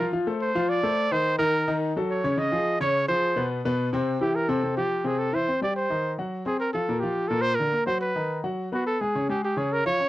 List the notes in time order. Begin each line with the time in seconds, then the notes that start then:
Already playing: A#4
0.00 F3 F4 F5
0.13 F3 F4 F5
0.27 A3 A4 C5
0.41 C5
0.55 F3 F4 F5
0.69 D5
0.83 A3 A4 C5
1.11 D#3 D#4 C5 D#5
1.39 D#3 D#4 A#4 D#5
1.68 D#3 D#4 D#5
1.96 F#3 F#4 A4
2.11 C#5
2.24 C#3 C#4 C#5
2.37 C#3 C#4 C#5 D#5
2.51 F3 F4 G#4
2.80 C#3 C#4 C#5
3.08 F3 F4 G#4 C5
3.36 B2 B3 B4
3.65 B2 B3 B4
3.93 C3 C4 C5
4.21 E3 E4 G4
4.35 A#4
4.49 C3 C4 A4 C5
4.63 C3 C4 C5
4.77 F3 F4 G4 F5
5.04 C3 C4 G#4 C5
5.18 A4
5.33 E3 E4 C5 E5
5.48 C4 C5 C6
5.61 G3 G4 D5 G5
5.76 C5
5.90 D#3 D#4 D#5
6.18 F#3 F#4 F#5
6.46 C4 G#4 C5 C6
6.60 A#4
6.73 F3 F4 A4 F5
6.89 A#2 A#3 A#4
7.00 F3 F4 G4 F5
7.28 A#2 A#3 A4 A#4
7.41 C5
7.55 A#4
7.59 D3 D4 D5
7.73 A#3 A#4 A#5
7.86 F#3 F#4 C5 F#5
8.01 B4
8.15 D#3 D#4 D#5
8.44 F#3 F#4 F#5
8.72 B3 F#4 B4 B5
8.87 A4
9.01 G#3 G#4 G#5
9.15 C#3 C#4 C#5
9.29 G#3 G4 G#4 G#5
9.45 G4
9.56 C#3 C#4 G#4 C#5
9.73 A#4
9.85 F3 F4 C#5 F5
9.99 C#4 C#5 C#6